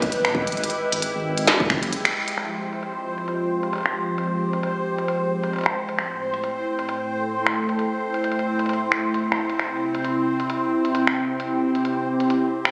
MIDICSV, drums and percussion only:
0, 0, Header, 1, 2, 480
1, 0, Start_track
1, 0, Tempo, 451128
1, 609, Time_signature, 4, 2, 24, 8
1, 13523, End_track
2, 0, Start_track
2, 0, Title_t, "Drums"
2, 23, Note_on_c, 9, 36, 78
2, 23, Note_on_c, 9, 42, 51
2, 129, Note_off_c, 9, 42, 0
2, 129, Note_on_c, 9, 42, 62
2, 130, Note_off_c, 9, 36, 0
2, 235, Note_off_c, 9, 42, 0
2, 263, Note_on_c, 9, 26, 80
2, 369, Note_on_c, 9, 36, 104
2, 370, Note_off_c, 9, 26, 0
2, 475, Note_off_c, 9, 36, 0
2, 503, Note_on_c, 9, 42, 47
2, 556, Note_off_c, 9, 42, 0
2, 556, Note_on_c, 9, 42, 39
2, 609, Note_off_c, 9, 42, 0
2, 609, Note_on_c, 9, 42, 32
2, 676, Note_off_c, 9, 42, 0
2, 676, Note_on_c, 9, 42, 67
2, 743, Note_off_c, 9, 42, 0
2, 743, Note_on_c, 9, 42, 37
2, 850, Note_off_c, 9, 42, 0
2, 983, Note_on_c, 9, 42, 51
2, 1089, Note_off_c, 9, 42, 0
2, 1089, Note_on_c, 9, 42, 64
2, 1195, Note_off_c, 9, 42, 0
2, 1463, Note_on_c, 9, 42, 51
2, 1569, Note_off_c, 9, 42, 0
2, 1569, Note_on_c, 9, 38, 112
2, 1569, Note_on_c, 9, 42, 65
2, 1675, Note_off_c, 9, 38, 0
2, 1675, Note_off_c, 9, 42, 0
2, 1703, Note_on_c, 9, 36, 112
2, 1809, Note_off_c, 9, 36, 0
2, 1809, Note_on_c, 9, 26, 76
2, 1809, Note_on_c, 9, 36, 99
2, 1915, Note_off_c, 9, 26, 0
2, 1915, Note_off_c, 9, 36, 0
2, 1943, Note_on_c, 9, 42, 51
2, 2049, Note_off_c, 9, 42, 0
2, 2049, Note_on_c, 9, 42, 65
2, 2155, Note_off_c, 9, 42, 0
2, 2183, Note_on_c, 9, 26, 83
2, 2183, Note_on_c, 9, 42, 37
2, 2290, Note_off_c, 9, 26, 0
2, 2290, Note_off_c, 9, 42, 0
2, 2423, Note_on_c, 9, 42, 52
2, 2529, Note_off_c, 9, 42, 0
2, 2529, Note_on_c, 9, 26, 54
2, 2529, Note_on_c, 9, 42, 60
2, 2635, Note_off_c, 9, 26, 0
2, 2635, Note_off_c, 9, 42, 0
2, 2903, Note_on_c, 9, 42, 46
2, 3009, Note_off_c, 9, 42, 0
2, 3009, Note_on_c, 9, 42, 56
2, 3115, Note_off_c, 9, 42, 0
2, 3383, Note_on_c, 9, 42, 49
2, 3489, Note_off_c, 9, 42, 0
2, 3489, Note_on_c, 9, 42, 58
2, 3595, Note_off_c, 9, 42, 0
2, 3863, Note_on_c, 9, 42, 47
2, 3969, Note_off_c, 9, 42, 0
2, 3969, Note_on_c, 9, 42, 56
2, 3996, Note_off_c, 9, 42, 0
2, 3996, Note_on_c, 9, 42, 46
2, 4023, Note_off_c, 9, 42, 0
2, 4023, Note_on_c, 9, 42, 40
2, 4050, Note_off_c, 9, 42, 0
2, 4050, Note_on_c, 9, 42, 32
2, 4077, Note_off_c, 9, 42, 0
2, 4077, Note_on_c, 9, 42, 27
2, 4103, Note_on_c, 9, 26, 74
2, 4183, Note_off_c, 9, 42, 0
2, 4210, Note_off_c, 9, 26, 0
2, 4449, Note_on_c, 9, 42, 62
2, 4555, Note_off_c, 9, 42, 0
2, 4823, Note_on_c, 9, 42, 49
2, 4929, Note_off_c, 9, 42, 0
2, 4929, Note_on_c, 9, 42, 58
2, 5035, Note_off_c, 9, 42, 0
2, 5303, Note_on_c, 9, 42, 49
2, 5409, Note_off_c, 9, 42, 0
2, 5409, Note_on_c, 9, 42, 61
2, 5515, Note_off_c, 9, 42, 0
2, 5783, Note_on_c, 9, 42, 49
2, 5889, Note_off_c, 9, 42, 0
2, 5889, Note_on_c, 9, 42, 27
2, 5916, Note_off_c, 9, 42, 0
2, 5916, Note_on_c, 9, 42, 33
2, 5942, Note_off_c, 9, 42, 0
2, 5942, Note_on_c, 9, 42, 38
2, 5969, Note_off_c, 9, 42, 0
2, 5969, Note_on_c, 9, 42, 45
2, 5996, Note_off_c, 9, 42, 0
2, 5996, Note_on_c, 9, 42, 53
2, 6023, Note_on_c, 9, 26, 71
2, 6103, Note_off_c, 9, 42, 0
2, 6130, Note_off_c, 9, 26, 0
2, 6263, Note_on_c, 9, 42, 49
2, 6369, Note_off_c, 9, 42, 0
2, 6369, Note_on_c, 9, 26, 53
2, 6369, Note_on_c, 9, 42, 61
2, 6475, Note_off_c, 9, 26, 0
2, 6475, Note_off_c, 9, 42, 0
2, 6743, Note_on_c, 9, 42, 45
2, 6848, Note_off_c, 9, 42, 0
2, 6848, Note_on_c, 9, 42, 59
2, 6955, Note_off_c, 9, 42, 0
2, 7223, Note_on_c, 9, 42, 48
2, 7329, Note_off_c, 9, 42, 0
2, 7329, Note_on_c, 9, 42, 59
2, 7435, Note_off_c, 9, 42, 0
2, 7943, Note_on_c, 9, 26, 68
2, 7943, Note_on_c, 9, 42, 61
2, 8049, Note_off_c, 9, 26, 0
2, 8049, Note_off_c, 9, 42, 0
2, 8183, Note_on_c, 9, 42, 47
2, 8289, Note_off_c, 9, 42, 0
2, 8289, Note_on_c, 9, 42, 57
2, 8395, Note_off_c, 9, 42, 0
2, 8663, Note_on_c, 9, 42, 44
2, 8769, Note_off_c, 9, 42, 0
2, 8769, Note_on_c, 9, 42, 53
2, 8849, Note_off_c, 9, 42, 0
2, 8849, Note_on_c, 9, 42, 45
2, 8929, Note_off_c, 9, 42, 0
2, 8929, Note_on_c, 9, 42, 38
2, 9035, Note_off_c, 9, 42, 0
2, 9143, Note_on_c, 9, 42, 43
2, 9214, Note_off_c, 9, 42, 0
2, 9214, Note_on_c, 9, 42, 36
2, 9249, Note_off_c, 9, 42, 0
2, 9249, Note_on_c, 9, 42, 57
2, 9294, Note_off_c, 9, 42, 0
2, 9294, Note_on_c, 9, 42, 29
2, 9400, Note_off_c, 9, 42, 0
2, 9489, Note_on_c, 9, 26, 65
2, 9595, Note_off_c, 9, 26, 0
2, 9729, Note_on_c, 9, 42, 57
2, 9835, Note_off_c, 9, 42, 0
2, 9916, Note_on_c, 9, 26, 68
2, 10023, Note_off_c, 9, 26, 0
2, 10104, Note_on_c, 9, 42, 48
2, 10209, Note_off_c, 9, 42, 0
2, 10209, Note_on_c, 9, 26, 52
2, 10209, Note_on_c, 9, 42, 58
2, 10315, Note_off_c, 9, 26, 0
2, 10315, Note_off_c, 9, 42, 0
2, 10583, Note_on_c, 9, 42, 45
2, 10689, Note_off_c, 9, 42, 0
2, 10689, Note_on_c, 9, 42, 56
2, 10795, Note_off_c, 9, 42, 0
2, 11063, Note_on_c, 9, 42, 45
2, 11169, Note_off_c, 9, 42, 0
2, 11169, Note_on_c, 9, 42, 54
2, 11275, Note_off_c, 9, 42, 0
2, 11543, Note_on_c, 9, 42, 45
2, 11649, Note_off_c, 9, 42, 0
2, 11649, Note_on_c, 9, 42, 59
2, 11755, Note_off_c, 9, 42, 0
2, 11783, Note_on_c, 9, 26, 70
2, 11889, Note_off_c, 9, 26, 0
2, 12128, Note_on_c, 9, 42, 58
2, 12235, Note_off_c, 9, 42, 0
2, 12503, Note_on_c, 9, 42, 43
2, 12609, Note_off_c, 9, 42, 0
2, 12609, Note_on_c, 9, 42, 53
2, 12715, Note_off_c, 9, 42, 0
2, 12983, Note_on_c, 9, 42, 46
2, 13089, Note_off_c, 9, 42, 0
2, 13089, Note_on_c, 9, 42, 56
2, 13195, Note_off_c, 9, 42, 0
2, 13463, Note_on_c, 9, 26, 68
2, 13463, Note_on_c, 9, 42, 44
2, 13523, Note_off_c, 9, 26, 0
2, 13523, Note_off_c, 9, 42, 0
2, 13523, End_track
0, 0, End_of_file